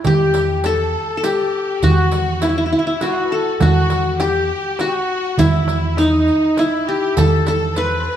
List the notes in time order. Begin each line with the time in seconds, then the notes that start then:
Already playing: E4
0.04 E2 G4, riq, darbuka dum
0.34 riq, darbuka tek
0.64 A4, riq, darbuka tek
0.94 darbuka ka
1.09 A4
1.17 A4
1.22 G4, riq, darbuka tek
1.68 G4
1.82 E2 F#4, riq, darbuka dum
1.90 G4
1.96 F#4
2.12 riq, darbuka tek
2.35 F#4
2.41 E4, riq, darbuka tek
2.49 E4
2.58 E4
2.66 E4
2.72 E4, darbuka ka
2.79 E4
2.87 E4
3.00 F#4, riq, darbuka tek
3.24 B4
3.30 A4
3.59 E2 F#4, riq, darbuka dum
3.90 riq, darbuka tek
4.19 G4, riq, darbuka tek
4.50 darbuka ka
4.79 F#4, riq, darbuka tek
4.87 G4
4.94 F#4
5.38 E2 E4, riq, darbuka dum
5.68 riq, darbuka tek
5.97 D#4, riq, darbuka tek
6.27 riq, darbuka ka
6.57 E4, riq, darbuka tek
6.88 G4
7.16 E2 A4, riq, darbuka dum
7.46 A4, riq, darbuka tek
7.76 B4, riq, darbuka tek
7.84 C5
7.92 B4
8.00 C5
8.06 B4, darbuka ka